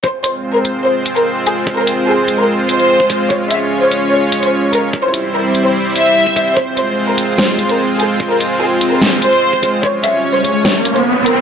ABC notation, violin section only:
X:1
M:4/4
L:1/16
Q:1/4=147
K:Fm
V:1 name="Violin section"
c2 c3 B3 c3 B3 A2- | A B3 A3 B3 c4- c z | d2 =e3 c3 d3 c3 B2- | B c3 B3 c3 =e4- e z |
c2 c3 B3 c3 B3 A2- | A B3 A3 B3 c4- c z | d2 =e3 c3 d3 c3 B2 |]